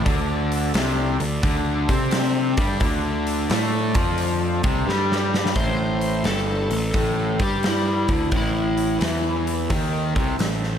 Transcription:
0.04 D2 D3 A3 D4 A4 D5, kick, open hi-hat
0.52 open hi-hat
0.74 C2 C3, snare, open hi-hat
1.20 D2 D3, open hi-hat
1.43 D2 D3, kick, open hi-hat
1.89 C3 C4, kick, open hi-hat
2.11 snare, open hi-hat
2.57 G2 G3, kick, open hi-hat
2.79 D2 D3 A3 D4 A4 D5, kick, open hi-hat
3.27 open hi-hat
3.50 A2 A3, snare, open hi-hat
3.94 F2 F3, kick, open hi-hat
4.18 open hi-hat
4.63 C2 C3, kick, open hi-hat
4.87 G2 G3, snare
5.12 snare
5.34 snare
5.46 snare
5.55 A1 A2 C4 E4 A4 C5, kick, open hi-hat
6.01 open hi-hat
6.24 G1 G2 A4, snare, open hi-hat
6.70 A1 A2, open hi-hat
6.94 A1 A2, kick, open hi-hat
7.39 G2 G3 G4, kick, open hi-hat
7.63 snare, open hi-hat
7.67 E4
8.08 D2 D3, kick, open hi-hat
8.32 A1 A2 C4 A4 E5, kick, open hi-hat
8.37 E4
8.77 open hi-hat
9.00 E2 E3, snare, open hi-hat
9.47 open hi-hat
9.70 D#2 D#3, kick, open hi-hat
10.16 C2 C3, kick, open hi-hat
10.39 A1 A2, snare, open hi-hat
10.63 snare

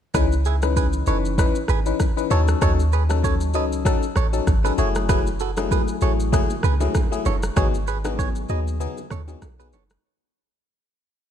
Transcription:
0.14 C#2 E3 C#4 D#4 G#4 B4, kick, cross-stick, shaker
0.32 shaker
0.45 E4 G#4, shaker
0.62 E3 C#4 D#4 B4, cross-stick, shaker
0.76 G#4 B4, kick, shaker
0.93 shaker
1.06 F#1 E3 C#4 D#4 A4 B4 C#5, shaker
1.25 shaker
1.38 E3 C#4 D#4 B4, kick, cross-stick, shaker
1.55 shaker
1.68 G#1 G#4 B4, cross-stick, shaker
1.86 E3 C#4 D#4 B4, shaker
2.00 kick, cross-stick, shaker
2.17 E3 C#4 D#4 B4, shaker
2.30 D#2 F#3 C#4 D#4 A4 C#5, shaker
2.48 cross-stick, shaker
2.61 D#2 F#3 C#4 D#4 A4 C#5, kick, cross-stick, shaker
2.80 shaker
2.93 G#4 B4, shaker
3.09 F#3 C#4 D#4 A4, cross-stick, shaker
3.24 A4 C#5, kick, shaker
3.40 shaker
3.54 C#2 F#3 C#4 D#4 A4 B4 D#5, shaker
3.72 shaker
3.85 F#3 C#4 D#4 A4, kick, cross-stick, shaker
4.03 shaker
4.16 A1 A4 C#5, cross-stick, shaker
4.33 F#3 C#4 D#4 A4, shaker
4.47 G#1, kick, cross-stick, shaker
4.64 F#3 C#4 D#4 G#4 A4 B4, shaker
4.78 F#1 F#3 A3 E4 G#4 A4 C#5, shaker
4.95 cross-stick, shaker
5.09 F#3 A3 E4 G#4 B4, kick, cross-stick, low conga, shaker
5.27 shaker
5.40 F#4 A4, shaker
5.57 F#3 A3 E4 G#4, cross-stick, low bongo, shaker
5.71 G#4 B4, kick, high bongo, shaker
5.88 shaker
6.01 A1 F#3 A3 E4 G#4 A4 C#5, shaker
6.20 shaker
6.32 F#3 A3 E4 G#4, kick, cross-stick, low conga, shaker
6.50 high bongo, shaker
6.63 C#2 G#4 B4, cross-stick, low conga, shaker
6.80 F#3 A3 E4 G#4, low bongo, shaker
6.95 kick, cross-stick, high bongo, shaker
7.11 F#3 A3 E4 G#4, shaker
7.25 F#1 A4 C#5, low bongo, shaker
7.43 cross-stick, shaker
7.56 G#1 F#3 B3 D#4 G#4 C#5, kick, cross-stick, low conga, shaker
7.74 shaker
7.87 G#4 B4, shaker
8.04 F#3 B3 D#4 G#4, cross-stick, low bongo, shaker
8.19 G#4 C#5, kick, high bongo, shaker
8.35 shaker
8.49 D#2 F#3 B3 D#4 G#4 B4 D#5, shaker
8.67 shaker
8.80 F#3 B3 D#4 G#4, low conga, shaker
8.97 high bongo, shaker
9.11 D#2 A4 C#5, cross-stick, low conga, shaker
9.28 F#3 B3 D#4 G#4, low bongo, shaker
9.42 B1, cross-stick, high bongo, shaker
9.59 F#3 B3 D#4 G#4 B4, shaker
9.73 F#1 A4 C#5, low bongo, shaker
9.90 cross-stick, shaker

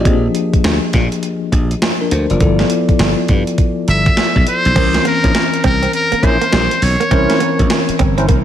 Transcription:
Already playing: G4 D#5
0.05 A#1 F3 A#3 C4 G#4, kick, closed hi-hat
0.13 D4
0.35 closed hi-hat
0.53 muted slap bass stroke, kick, closed hi-hat
0.64 D2, snare, closed hi-hat
0.93 A#2, kick, snare, closed hi-hat
1.12 closed hi-hat
1.23 closed hi-hat
1.52 A#1, kick, closed hi-hat
1.71 closed hi-hat
1.82 snare, closed hi-hat
2.01 D4 A#4
2.11 D2 C5, closed hi-hat
2.30 F#1 F4 D5, closed hi-hat
2.40 G1 F3 B3 E4 A4, kick, closed hi-hat
2.59 snare
2.70 closed hi-hat
2.89 muted slap bass stroke, kick, closed hi-hat
2.99 G1, snare, closed hi-hat
3.28 G2, kick, closed hi-hat
3.47 closed hi-hat
3.58 kick, closed hi-hat
3.88 G1 E5, closed hi-hat
4.06 kick, closed hi-hat
4.17 muted slap bass stroke, snare, closed hi-hat
4.36 B1, kick
4.47 C5, closed hi-hat
4.65 B1, closed hi-hat
4.75 C2 E3 C4 C#4 A#4, kick, closed hi-hat, crash
4.94 muted clean electric guitar stroke, snare, closed hi-hat
5.05 A#3 A#4, closed hi-hat
5.24 A#1 C#4 E4 A#4 C5, kick, closed hi-hat
5.35 muted clean electric guitar stroke, snare, closed hi-hat
5.54 closed hi-hat
5.64 C2 C4 A#4, kick, closed hi-hat
5.83 C4, closed hi-hat
5.93 A#4, closed hi-hat
6.12 A#3, muted slap bass stroke, closed hi-hat
6.23 A#1 C#4 E4 A#4 C5, muted clean electric guitar stroke, kick, closed hi-hat
6.41 A#3, closed hi-hat
6.52 A#1 G3, snare, closed hi-hat
6.71 muted clean electric guitar stroke, closed hi-hat
6.82 B1 C#5, open hi-hat
7.00 A#3, closed hi-hat
7.11 C2 E3 C4 C#4 E4 A#4 C5, kick, closed hi-hat
7.30 muted clean electric guitar stroke, snare, closed hi-hat
7.40 A#3, closed hi-hat
7.59 A#1, kick, closed hi-hat
7.70 muted clean electric guitar stroke, snare, closed hi-hat
7.89 muted slap bass stroke, closed hi-hat
7.99 G1 C4, kick, closed hi-hat
8.18 C4 C#4 E4 A#4 C5, closed hi-hat
8.29 C2 A#3, kick, closed hi-hat

